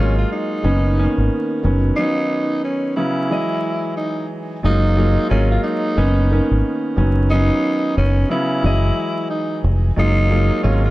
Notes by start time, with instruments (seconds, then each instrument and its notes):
Already playing: fingered electric bass G#1, grand piano F#3 G#3 A#3, tenor saxophone C#4
0.00 grand piano F4
0.18 tenor saxophone F4
0.32 tenor saxophone D#4
0.63 fingered electric bass F#1, grand piano D#3 A#3 B3 C#4
0.98 grand piano D#3 A#3 B3 C#4
1.18 fingered electric bass G#1
1.63 fingered electric bass F#1, grand piano D#3 F#3 B3 C#4
1.96 grand piano D#3 F#3 B3 C#4, tenor saxophone D#4
2.64 tenor saxophone C#4
2.96 grand piano C#3 F#3 B3 C#4, tenor saxophone E4
3.30 grand piano E3 F#3 G#3 D#5
3.97 tenor saxophone D#4
4.63 fingered electric bass F#1, grand piano F#3 G#3 A#3 F4, tenor saxophone D#4
4.97 grand piano F#3 G#3 A#3 F4
5.30 fingered electric bass G#1, grand piano F#3 G#3 A#3 F4, tenor saxophone C#4
5.51 tenor saxophone F4
5.63 tenor saxophone D#4
5.96 fingered electric bass F#1, grand piano D#3 A#3 B3 C#4
6.31 grand piano D#3 A#3 B3 C#4
6.51 fingered electric bass G#1
6.96 fingered electric bass F#1, grand piano D#3 F#3 B3 C#4
7.30 grand piano D#3 F#3 B3 C#4, tenor saxophone D#4
7.97 fingered electric bass F#1, tenor saxophone C#4
8.29 grand piano C#3 F#3 B3 C#4, tenor saxophone E4
8.64 fingered electric bass F#1, grand piano E3 F#3 G#3 D#5
9.30 tenor saxophone D#4
9.64 fingered electric bass F1
9.96 fingered electric bass F#1, grand piano F#3 G#3 A#3 F4, tenor saxophone D#4
10.30 grand piano F#3 G#3 A#3 F4
10.63 fingered electric bass G#1, grand piano F#3 G#3 A#3 F4, tenor saxophone C#4
10.84 tenor saxophone F4